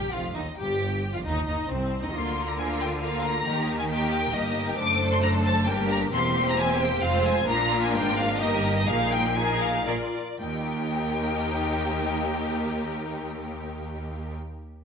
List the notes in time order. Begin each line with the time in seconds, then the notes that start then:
Already playing: G4 G5
0.12 F1 F2 F4 F5
0.34 D#2 D#4 D#5
0.58 G1 G2 G4 G5
1.13 F2 F4 F5
1.24 D#2 D#4 D#5
1.47 D#2 D#4 D#5
1.69 C2 C4 C5
2.02 D#2 D#4 D#5
2.13 D2 D3 A#3 F4 A#4 C6
2.47 A#5
2.56 A#3 F4 A#4 G#5
2.80 G5
3.01 A#3 F4 A#4 F5
3.24 A#5
3.44 D#2 D#3 A#3 D#4 G4 A#4
3.79 G#5
3.89 A#3 D#4 G4 A#4 G5
4.11 G5
4.33 G1 G2 A#3 D#4 G4 A#4 D#5
4.67 G5
4.77 F#1 F#2 A3 D4 A4 C5 D6
5.12 C6
5.22 A#5
5.44 A5
5.66 G1 G2 A#3 D4 G4 A#4 G5
5.90 A#5
6.12 E1 E2 A#3 C4 G4 C5 C6
6.48 A#5
6.59 G#5
6.81 G5
7.01 F1 F2 G#3 C4 F4 C5 F5
7.26 G#5
7.45 A#1 A#2 A#3 D4 F4 A#4 A#5
7.83 G#5
7.93 G#1 G#2 G5
8.17 F5
8.38 G1 G2 A#3 D#4 G4 A#4 D#5
8.75 D#5
8.85 A#1 A#2 A#3 D#4 G#4 A#4 F5
9.12 G5
9.35 A#3 D#4 G#4 A#4 G#5
9.60 F5
9.86 A#1 A#2 A#3 F4 G#4 A#4 D5
10.40 D#2 A#3 D#4 G4 A#4 G5